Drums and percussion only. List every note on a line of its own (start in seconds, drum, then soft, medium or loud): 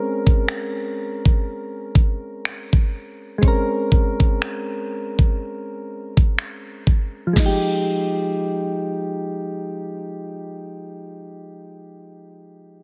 0.27 kick medium
0.49 finger snap loud
1.25 kick medium
1.95 kick loud
2.45 finger snap loud
2.73 kick medium
3.43 kick loud
3.92 kick medium
4.20 kick medium
4.42 finger snap loud
5.19 kick medium
6.17 kick medium
6.39 finger snap loud
6.87 kick medium
7.36 kick medium
7.36 snare medium
7.36 crash medium